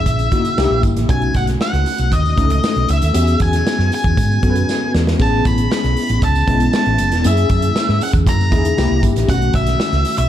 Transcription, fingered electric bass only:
0, 0, Header, 1, 2, 480
1, 0, Start_track
1, 0, Tempo, 511945
1, 1026, Time_signature, 4, 2, 24, 8
1, 9646, End_track
2, 0, Start_track
2, 0, Title_t, "Fingered electric bass"
2, 0, Program_c, 0, 33
2, 56, Note_on_c, 0, 34, 83
2, 247, Note_off_c, 0, 34, 0
2, 542, Note_on_c, 0, 36, 95
2, 637, Note_off_c, 0, 36, 0
2, 661, Note_on_c, 0, 34, 95
2, 757, Note_off_c, 0, 34, 0
2, 782, Note_on_c, 0, 31, 78
2, 877, Note_off_c, 0, 31, 0
2, 902, Note_on_c, 0, 33, 86
2, 997, Note_off_c, 0, 33, 0
2, 1025, Note_on_c, 0, 35, 105
2, 1214, Note_off_c, 0, 35, 0
2, 1264, Note_on_c, 0, 35, 89
2, 1454, Note_off_c, 0, 35, 0
2, 1624, Note_on_c, 0, 37, 93
2, 1719, Note_off_c, 0, 37, 0
2, 1868, Note_on_c, 0, 35, 84
2, 1962, Note_off_c, 0, 35, 0
2, 1985, Note_on_c, 0, 39, 89
2, 2175, Note_off_c, 0, 39, 0
2, 2229, Note_on_c, 0, 37, 86
2, 2418, Note_off_c, 0, 37, 0
2, 2590, Note_on_c, 0, 35, 85
2, 2685, Note_off_c, 0, 35, 0
2, 2711, Note_on_c, 0, 37, 89
2, 2805, Note_off_c, 0, 37, 0
2, 2836, Note_on_c, 0, 39, 90
2, 2928, Note_off_c, 0, 39, 0
2, 2951, Note_on_c, 0, 40, 99
2, 3140, Note_off_c, 0, 40, 0
2, 3191, Note_on_c, 0, 40, 90
2, 3380, Note_off_c, 0, 40, 0
2, 3550, Note_on_c, 0, 42, 92
2, 3645, Note_off_c, 0, 42, 0
2, 3791, Note_on_c, 0, 40, 86
2, 3886, Note_off_c, 0, 40, 0
2, 3913, Note_on_c, 0, 44, 91
2, 4102, Note_off_c, 0, 44, 0
2, 4154, Note_on_c, 0, 42, 82
2, 4342, Note_off_c, 0, 42, 0
2, 4637, Note_on_c, 0, 40, 82
2, 4824, Note_off_c, 0, 40, 0
2, 4872, Note_on_c, 0, 33, 101
2, 5061, Note_off_c, 0, 33, 0
2, 5113, Note_on_c, 0, 33, 83
2, 5302, Note_off_c, 0, 33, 0
2, 5477, Note_on_c, 0, 35, 83
2, 5570, Note_off_c, 0, 35, 0
2, 5717, Note_on_c, 0, 33, 81
2, 5810, Note_off_c, 0, 33, 0
2, 5834, Note_on_c, 0, 37, 88
2, 6022, Note_off_c, 0, 37, 0
2, 6071, Note_on_c, 0, 35, 89
2, 6260, Note_off_c, 0, 35, 0
2, 6439, Note_on_c, 0, 33, 77
2, 6531, Note_off_c, 0, 33, 0
2, 6561, Note_on_c, 0, 30, 96
2, 6677, Note_off_c, 0, 30, 0
2, 6677, Note_on_c, 0, 28, 85
2, 6769, Note_off_c, 0, 28, 0
2, 6799, Note_on_c, 0, 42, 98
2, 6984, Note_off_c, 0, 42, 0
2, 7031, Note_on_c, 0, 42, 85
2, 7219, Note_off_c, 0, 42, 0
2, 7396, Note_on_c, 0, 44, 84
2, 7488, Note_off_c, 0, 44, 0
2, 7630, Note_on_c, 0, 40, 84
2, 7750, Note_off_c, 0, 40, 0
2, 7750, Note_on_c, 0, 42, 100
2, 7990, Note_off_c, 0, 42, 0
2, 7990, Note_on_c, 0, 40, 85
2, 8177, Note_off_c, 0, 40, 0
2, 8230, Note_on_c, 0, 36, 95
2, 8323, Note_off_c, 0, 36, 0
2, 8351, Note_on_c, 0, 36, 85
2, 8443, Note_off_c, 0, 36, 0
2, 8467, Note_on_c, 0, 31, 84
2, 8561, Note_off_c, 0, 31, 0
2, 8589, Note_on_c, 0, 33, 78
2, 8682, Note_off_c, 0, 33, 0
2, 8705, Note_on_c, 0, 35, 104
2, 8893, Note_off_c, 0, 35, 0
2, 8945, Note_on_c, 0, 35, 92
2, 9132, Note_off_c, 0, 35, 0
2, 9307, Note_on_c, 0, 37, 97
2, 9399, Note_off_c, 0, 37, 0
2, 9547, Note_on_c, 0, 35, 85
2, 9639, Note_off_c, 0, 35, 0
2, 9646, End_track
0, 0, End_of_file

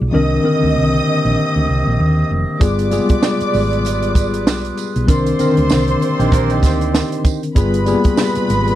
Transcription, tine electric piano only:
0, 0, Header, 1, 2, 480
1, 0, Start_track
1, 0, Key_signature, -3, "minor"
1, 0, Tempo, 619195
1, 109, Time_signature, 4, 2, 24, 8
1, 6784, End_track
2, 0, Start_track
2, 0, Title_t, "Tine electric piano"
2, 0, Program_c, 0, 4
2, 0, Control_c, 0, 64, 127
2, 95, Note_on_c, 0, 51, 78
2, 99, Note_on_c, 0, 60, 73
2, 105, Note_on_c, 0, 62, 76
2, 111, Note_on_c, 0, 70, 90
2, 120, Control_c, 0, 64, 0
2, 261, Control_c, 0, 64, 127
2, 290, Note_off_c, 0, 51, 0
2, 292, Note_off_c, 0, 60, 0
2, 295, Note_off_c, 0, 62, 0
2, 298, Note_off_c, 0, 70, 0
2, 335, Note_on_c, 0, 51, 83
2, 340, Note_on_c, 0, 60, 76
2, 345, Note_on_c, 0, 50, 71
2, 351, Note_on_c, 0, 70, 84
2, 1056, Note_off_c, 0, 51, 0
2, 1058, Note_off_c, 0, 60, 0
2, 1061, Note_off_c, 0, 50, 0
2, 1063, Note_off_c, 0, 70, 0
2, 2013, Note_on_c, 0, 55, 79
2, 2022, Note_on_c, 0, 59, 75
2, 2025, Note_on_c, 0, 65, 69
2, 2032, Note_on_c, 0, 68, 82
2, 2033, Control_c, 0, 64, 0
2, 2168, Control_c, 0, 64, 127
2, 2207, Note_off_c, 0, 55, 0
2, 2211, Note_off_c, 0, 59, 0
2, 2213, Note_off_c, 0, 65, 0
2, 2216, Note_off_c, 0, 68, 0
2, 2251, Note_on_c, 0, 55, 80
2, 2257, Note_on_c, 0, 56, 60
2, 2264, Note_on_c, 0, 65, 72
2, 2270, Note_on_c, 0, 68, 88
2, 2308, Note_on_c, 0, 59, 73
2, 2319, Note_off_c, 0, 56, 0
2, 2973, Note_off_c, 0, 55, 0
2, 2979, Note_off_c, 0, 65, 0
2, 2982, Note_off_c, 0, 68, 0
2, 3001, Note_off_c, 0, 59, 0
2, 3931, Note_on_c, 0, 51, 77
2, 3936, Note_on_c, 0, 60, 77
2, 3942, Note_on_c, 0, 62, 71
2, 3949, Note_on_c, 0, 70, 91
2, 3952, Control_c, 0, 64, 0
2, 4098, Control_c, 0, 64, 127
2, 4126, Note_off_c, 0, 51, 0
2, 4128, Note_off_c, 0, 60, 0
2, 4131, Note_off_c, 0, 62, 0
2, 4135, Note_off_c, 0, 70, 0
2, 4173, Note_on_c, 0, 50, 64
2, 4179, Note_on_c, 0, 60, 76
2, 4185, Note_on_c, 0, 62, 71
2, 4190, Note_on_c, 0, 70, 89
2, 4223, Note_on_c, 0, 51, 77
2, 4237, Note_off_c, 0, 50, 0
2, 4897, Note_off_c, 0, 60, 0
2, 4900, Note_off_c, 0, 62, 0
2, 4903, Note_off_c, 0, 70, 0
2, 4919, Note_off_c, 0, 51, 0
2, 5854, Note_on_c, 0, 55, 81
2, 5860, Note_on_c, 0, 59, 77
2, 5865, Note_on_c, 0, 65, 69
2, 5871, Note_on_c, 0, 68, 90
2, 5874, Control_c, 0, 64, 0
2, 6007, Control_c, 0, 64, 127
2, 6048, Note_off_c, 0, 55, 0
2, 6051, Note_off_c, 0, 59, 0
2, 6053, Note_off_c, 0, 65, 0
2, 6057, Note_off_c, 0, 68, 0
2, 6092, Note_on_c, 0, 55, 88
2, 6097, Note_on_c, 0, 58, 62
2, 6103, Note_on_c, 0, 65, 75
2, 6109, Note_on_c, 0, 68, 86
2, 6148, Note_on_c, 0, 59, 75
2, 6160, Note_off_c, 0, 58, 0
2, 6784, Note_off_c, 0, 55, 0
2, 6784, Note_off_c, 0, 59, 0
2, 6784, Note_off_c, 0, 65, 0
2, 6784, Note_off_c, 0, 68, 0
2, 6784, End_track
0, 0, End_of_file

